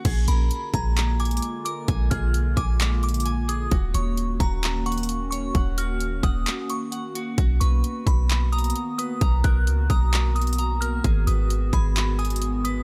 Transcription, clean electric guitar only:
\new Staff \with { instrumentName = "Clean electric guitar" } { \time 4/4 \key bes \phrygian \tempo 4 = 131 aes'8 bes'4 aes'4 aes''4 bes'8 | aes''8 aes'4 aes''4. aes''8 aes'8 | ges'8 des''4 ges'4 ges''4 des''8 | ges''8 ges'4 ges''4. ges''8 ges'8 |
fis'8 b'2 ais''4 b'8 | ais''8 ais'4 ais''4. ais''8 ais'8 | aes'8 ces''4 aes'4 aes''4 ces''8 | }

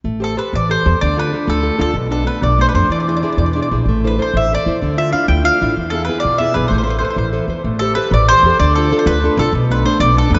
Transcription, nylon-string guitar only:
\new Staff \with { instrumentName = "Nylon-string guitar" } { \time 6/8 \key a \minor \tempo 4. = 127 a8 <g' a' c''>8 <g' a' c''>8 e8 <g' a' c''>8 <g' a' c''>8 | d8 <d' f' a'>8 <d' f' a'>8 a8 <d' f' a'>8 <d' f' a'>8 | b,8 <a b d'>8 <a b d'>8 b,8 <a b d'>8 <a b d'>8 | e8 <d' e' gis'>8 <d' e' gis'>8 b,8 <d' e' gis'>8 <d' e' gis'>8 |
a8 <e' a' c''>8 <e' a' c''>8 e8 <e' a' c''>8 <e' a' c''>8 | d8 <d' e' f'>8 <d' e' f'>8 a8 <d' f'>8 <d' e' f'>8 | e8 <b e' gis'>8 <b e' gis'>8 b,8 <b e' gis'>8 <b e' gis'>8 | a8 <a' b' c''>8 <a' b' c''>8 e8 <a' b' c''>8 <a' b' c''>8 |
a8 <g' a' c''>8 <g' a' c''>8 e8 <g' a' c''>8 <g' a' c''>8 | d8 <d' f' a'>8 <d' f' a'>8 a8 <d' f' a'>8 <d' f' a'>8 | b,8 <a b d'>8 <a b d'>8 b,8 <a b d'>8 <a b d'>8 | }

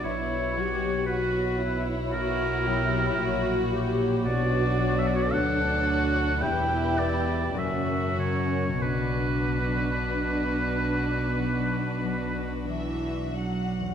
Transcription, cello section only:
\new Staff \with { instrumentName = "Cello section" } { \clef bass \time 4/4 \key b \minor \tempo 4 = 54 b,2. ais,4 | b,4 d,4 e,4 fis,4 | b,2. e8 fis8 | }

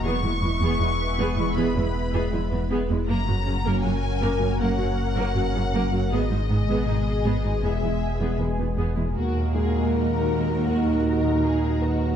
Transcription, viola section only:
\new Staff \with { instrumentName = "Viola section" } { \time 4/4 \key ees \phrygian \tempo 4 = 79 <b gis'>16 <gis e'>16 <e b>16 <b gis'>16 <gis e'>16 r16 <b gis'>16 <gis e'>16 <b gis'>16 <gis e'>16 r16 <b gis'>16 <gis e'>16 <e b>16 <b gis'>16 <gis e'>16 | <bes bes'>16 <ges ges'>16 <des des'>16 <bes bes'>16 <ges ges'>16 r16 <bes bes'>16 <ges ges'>16 <bes bes'>16 <ges ges'>16 r16 <bes bes'>16 <ges ges'>16 <des des'>16 <bes bes'>16 <ges ges'>16 | <ces' aes'>16 <aes ees'>16 <ees ces'>16 <ces' aes'>16 <aes ees'>16 r16 <ces' aes'>16 <aes ees'>16 <b gis'>16 <gis e'>16 r16 <b gis'>16 <gis e'>16 <e b>16 <b gis'>16 <gis e'>16 | <ges' bes'>1 | }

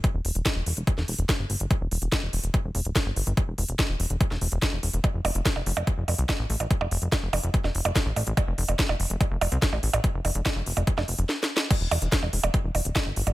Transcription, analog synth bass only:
\new Staff \with { instrumentName = "Analog synth bass" } { \clef bass \time 4/4 \key d \dorian \tempo 4 = 144 r16 e,,16 e,,16 e,,16 r16 e,,16 e,,16 e,,16 r16 e,,16 e,,16 e,,16 r16 g,,16 g,,16 g,,16 | r16 e,,16 e,,16 e,,16 r16 e,,16 e,,16 e,,16 r16 e,,16 e,,16 d,,16 r16 g,,16 g,,16 g,,16 | r16 e,,16 e,,16 e,,16 r16 e,,16 e,,16 e,,16 r16 e,,16 e,,16 e,,16 r16 e,,16 e,,16 e,,16 | r16 f,,16 f,,16 f,,16 r16 f,,16 f,,16 f,,16 r16 f,,16 f,,16 c,16 r16 a,,16 a,,16 a,,16 |
r16 f,,16 f,,16 f,,16 r16 f,,16 f,,16 f,,16 r16 f,,16 f,,16 f,,16 r16 a,,16 a,,16 a,,16 | r16 f,,16 f,,16 f,,16 r16 f,,16 f,,16 f,,16 r16 f,,16 f,,16 c,16 r16 a,,16 a,,16 a,,16 | r16 f,,16 f,,16 f,,16 r16 f,,16 f,,16 f,,16 r16 f,,16 f,,16 f,,16 r4 | r16 e,,16 e,,16 e,,16 r16 e,,16 e,,16 e,,16 r16 e,,16 e,,16 d,,16 r16 g,,16 g,,16 g,,16 | }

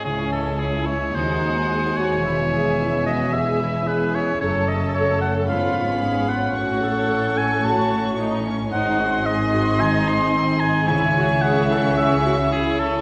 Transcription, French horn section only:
\new Staff \with { instrumentName = "French horn section" } { \time 4/4 \key cis \minor \tempo 4 = 111 << { e'2 fis'2 | e'1 | cis'1~ | cis'1 |
dis'1 | e'1 | } \\ { gis1~ | gis1 | a2 b2 | a1 |
bis1 | cis'1 | } >> }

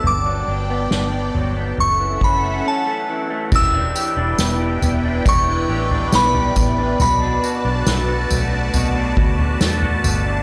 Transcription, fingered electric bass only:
\new Staff \with { instrumentName = "Fingered electric bass" } { \clef bass \time 4/4 \key e \dorian \tempo 4 = 69 g,,8 g,,8 g,,8 g,,8 fis,,8 fis,,8 r4 | e,,8 r16 e,,16 e,,8 e,,8 e,,8 a,,8 b,,8 a,,8 | b,,8 r16 b,,16 b,,8 b,,8 b,,8 d,8 e,8 g,,8 | }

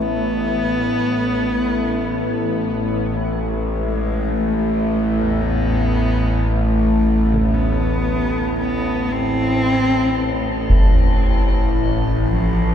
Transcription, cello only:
\new Staff \with { instrumentName = "Cello" } { \time 4/4 \key a \minor \tempo 4 = 56 b2. r8 gis8 | a4 b4 a4 b4 | b8 c'4. r4. f8 | }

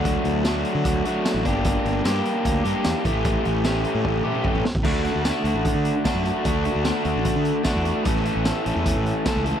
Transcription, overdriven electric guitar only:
\new Staff \with { instrumentName = "Overdriven electric guitar" } { \time 4/4 \key d \major \tempo 4 = 150 <fis a d' fis'>4 <fis a d' fis'>4. <fis a d' fis'>4 <bes d' g'>8~ | <bes d' g'>4 <bes d' g'>4. <bes d' g'>4 <e a cis' g'>8~ | <e a cis' g'>4 <e a cis' g'>4. <e a cis' g'>4 r8 | <a d' fis'>8 <d' fis'>8 <a d' fis'>8 <d' fis'>4. <a d' fis'>8 <d' fis'>8 |
<a d' fis'>8 <d' fis'>8 <a d' fis'>8 <d' fis'>4. <a d' fis'>8 <d' fis'>8 | <e a cis' a'>8 <a cis' a'>8 <e a cis' a'>8 <a cis' a'>4. <e a cis' a'>8 <a cis' a'>8 | }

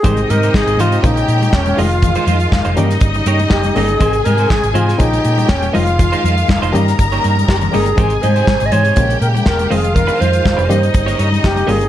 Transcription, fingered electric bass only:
\new Staff \with { instrumentName = "Fingered electric bass" } { \clef bass \time 4/4 \key aes \major \tempo 4 = 121 aes,,8 aes,8 aes,,16 aes,,16 aes,8 bes,,8 bes,8 fes,,8 f,,8~ | f,,8 f,8 f,,16 f,,16 g,8 g,,8 g,8 ges,,8 g,,8 | aes,,8 aes,8 aes,,16 aes,,16 aes,8 bes,,8 bes,8 fes,,8 f,,8~ | f,,8 f,8 f,,16 f,,16 g,8 g,,8 g,8 ges,,8 g,,8 |
aes,,8 aes,8 aes,,16 aes,,16 aes,8 bes,,8 bes,8 fes,,8 f,,8~ | f,,8 f,8 f,,16 f,,16 g,8 g,,8 g,8 ges,,8 g,,8 | }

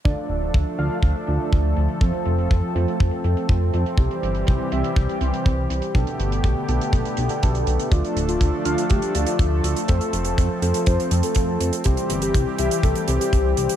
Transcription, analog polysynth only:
\new Staff \with { instrumentName = "Analog polysynth" } { \time 4/4 \key d \dorian \tempo 4 = 122 <d d' f' a' d''>4. <d d' f' a' f''>8 r8 <d d' f' a' d''>4. | <f c' f' a' c''>4. <f c' f' a' c''>2~ <f c' f' a' c''>8 | <c c' e' g' c''>4. <c c' e' g' e''>8 r8 <c c' e' g' c''>4. | <b, b d' g' a'>4. <b, b d' g' a'>4~ <b, b d' g' a'>16 <b, b d' g' a'>16 <b, b d' g' a'>4 |
<d d' f' a' d''>4. <d d' f' a' f''>8 r8 <d d' f' a' d''>4. | <f c' f' a' c''>4. <f c' f' a' c''>2~ <f c' f' a' c''>8 | <c c' e' g' c''>4. <c c' e' g' e''>8 r8 <c c' e' g' c''>4. | }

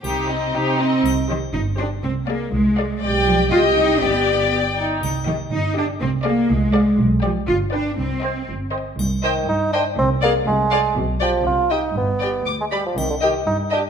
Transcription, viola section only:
\new Staff \with { instrumentName = "Viola section" } { \time 2/4 \key c \minor \tempo 4 = 121 ees'8 c'8 ees'8 c'8 | r8 g'8 r8 g'8 | r8 aes'8 r8 aes'8 | g'4 g'4 |
g'4 g'8 ees'8 | r8 g'8 r8 g'8 | r8 aes'8 r8 aes'8 | r8 g'8 r8 b'8 |
r8 c''8 r8 c''8 | r8 c''8 r8 c''8 | r8 aes'8 r8 aes'8 | r8 g'8 r8 g'8 |
r8 g'8 r8 g'8 | r8 g'8 r8 g'8 | }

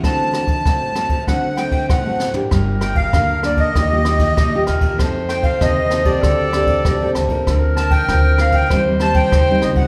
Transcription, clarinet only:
\new Staff \with { instrumentName = "Clarinet" } { \time 4/4 \key g \minor \tempo 4 = 97 r1 | bes'2 g'4 g'8 bes'8 | c''2 a'4. r8 | bes'2 c''2 | }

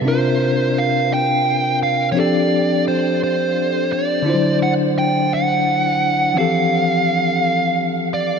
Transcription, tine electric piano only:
\new Staff \with { instrumentName = "Tine electric piano" } { \time 6/8 \key f \major \tempo 4. = 57 <c c' d' e' f' bes'>2. | <f c' d' g' a'>2. | <d fis d' e' f' c''>2. | <e f c' g' a'>2. | }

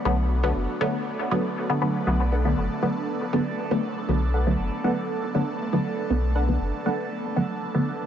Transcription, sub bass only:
\new Staff \with { instrumentName = "Sub bass" } { \clef bass \time 4/4 \key b \minor \tempo 4 = 119 b,,4 fis,,8 r2 r8 | b,,4 fis,,8 r2 r8 | b,,4 fis,,8 r2 r8 | b,,4 fis,,8 r2 r8 | }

